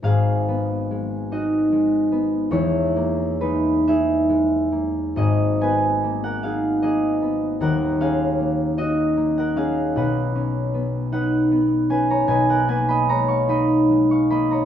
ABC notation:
X:1
M:6/8
L:1/16
Q:3/8=50
K:G#m
V:1 name="Harp"
[GB^e]6 [Fd]6 | [Ec]4 [DB]2 [Ge]6 | [Gd]2 [Bg]3 [Af] [G^e]2 [Gd]4 | [Af]2 [G^e]4 [Fd]3 [Af] [Ge]2 |
[Bf]6 [Bf]4 [Bg] [ca] | [Bg] [Af] [Bg] [db] [ca] [^ec'] [db]3 [ec'] [db] [ca] |]
V:2 name="Harp"
[G,,,G,,G,B,]2 B,2 G,2 D2 G,2 B,2 | [E,,,E,,]2 A,2 G,2 D2 G,2 A,2 | [G,,,G,,]2 B,2 A,2 D2 A,2 B,2 | [D,,,D,,]2 C2 A,2 D2 A,2 C2 |
[B,,,B,,]2 C2 B,2 D2 B,2 C2 | [B,,,B,,]2 A,2 G,2 D2 G,2 A,2 |]